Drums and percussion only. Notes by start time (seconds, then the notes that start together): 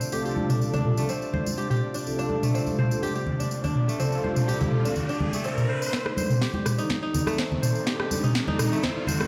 0.01 tambourine
0.12 tambourine
0.26 tambourine
0.37 high conga
0.49 mid tom, tambourine
0.61 tambourine
0.73 tambourine, high conga, low conga
0.85 mid tom
0.97 tambourine
1.09 tambourine
1.22 tambourine
1.34 high conga, low conga
1.46 tambourine, high conga
1.58 tambourine
1.70 mid tom, tambourine
1.94 tambourine
2.07 tambourine
2.19 tambourine
2.30 high conga
2.43 mid tom, tambourine
2.55 tambourine
2.67 tambourine, high conga
2.79 mid tom
2.91 tambourine
3.02 tambourine, high conga
3.15 tambourine
3.27 low conga
3.40 tambourine, high conga
3.51 tambourine
3.64 tambourine, low conga
3.76 mid tom
3.89 tambourine
4.00 tambourine
4.12 tambourine
4.24 high conga
4.36 mid tom, tambourine
4.49 tambourine
4.61 tambourine, high conga, low conga
4.72 mid tom
4.85 tambourine
4.96 tambourine, low conga
5.09 tambourine
5.20 high conga, low conga
5.33 tambourine, high conga
5.44 tambourine
5.58 mid tom, tambourine
5.82 tambourine
5.93 kick, snare
6.06 cross-stick
6.17 tambourine, high conga
6.30 mid tom, tambourine
6.41 kick, snare, tambourine
6.54 high conga
6.66 cross-stick, mid tom, tambourine
6.78 tambourine
6.89 kick, snare, tambourine, high conga
7.14 tambourine, low conga
7.26 cross-stick, tambourine, high conga
7.38 kick, snare, tambourine
7.52 low conga
7.63 mid tom, tambourine
7.75 tambourine
7.87 kick, snare, tambourine
8.00 cross-stick
8.11 tambourine, high conga
8.24 mid tom, tambourine
8.35 kick, snare, tambourine
8.47 high conga, low conga
8.59 cross-stick, mid tom, tambourine
8.73 tambourine
8.83 kick, snare, tambourine, low conga
9.07 tambourine, high conga, low conga
9.20 cross-stick, tambourine, high conga